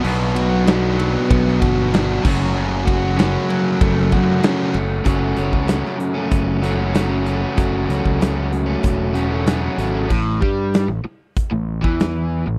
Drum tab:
CC |x-------------x-|----------------|----------------|----------------|
RD |--x-x-x-x-x-x---|--x-x-x-x-x-x-x-|----------------|----------------|
HH |----------------|----------------|x-x-x-x-x-x-x-x-|x-x-x-x-x-x-x-x-|
SD |----o----o--o---|----o----o--o---|----oo----o-o---|----o-------o---|
BD |--------o-o---o-|--o-----o-o-----|o--o----o-------|o--o----o-------|

CC |x---------------|
RD |----------------|
HH |----x---x---x---|
SD |----o-------o---|
BD |o-o-----o--o----|